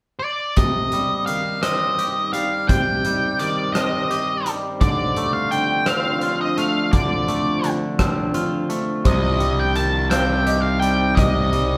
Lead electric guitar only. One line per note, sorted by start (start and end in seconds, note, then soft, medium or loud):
0.19 0.57 D5 soft
0.57 1.26 D#5 soft
1.26 1.62 F5 soft
1.63 2.33 D#5 medium
2.33 2.66 F5 medium
2.68 3.42 G5 medium
3.39 3.73 D5 medium
3.74 4.50 D#5 medium
4.81 5.30 D5 medium
5.33 5.51 F5 medium
5.51 5.88 G5 medium
5.87 6.41 F5 medium
6.41 6.57 D#5 soft
6.59 6.91 F5 medium
6.93 7.69 D5 soft
9.07 9.61 D#5 medium
9.60 9.76 G5 medium
9.76 10.10 A5 medium
10.10 10.61 G5 medium
10.62 10.80 F5 soft
10.80 11.17 G5 medium
11.15 11.77 D#5 medium